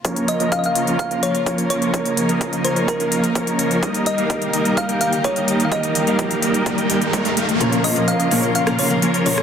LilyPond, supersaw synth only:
\new Staff \with { instrumentName = "Supersaw synth" } { \time 4/4 \key bes \minor \tempo 4 = 127 <f bes des' bes' des''>8. <f bes des' bes' ees''>8. <f bes des' bes' des''>8. <f bes des' bes' f''>8 r16 <f bes des' bes' des''>4 | <f bes des' bes' des''>8. <f bes des' bes' ees''>8. <f bes des' bes' des''>8. <f bes des' bes' f''>8 r16 <f bes des' bes' des''>4 | <g bes ees' bes' ees''>8. <g bes ees' bes' f''>8. <g bes ees' bes' ees''>8. <g bes ees' bes' g''>8 r16 <g bes ees' bes' ees''>4 | <g bes ees' bes' ees''>8. <g bes ees' bes' f''>8. <g bes ees' bes' ees''>8. <g bes ees' bes' g''>8 r16 <g bes ees' bes' des''>16 <g bes ees' bes' f''>16 r8 |
<f bes des' bes' des''>8. <f bes des' bes' ees''>8. <f bes des' bes' des''>8. <f bes des' bes' f''>8 r16 <f bes des' bes' des''>4 | }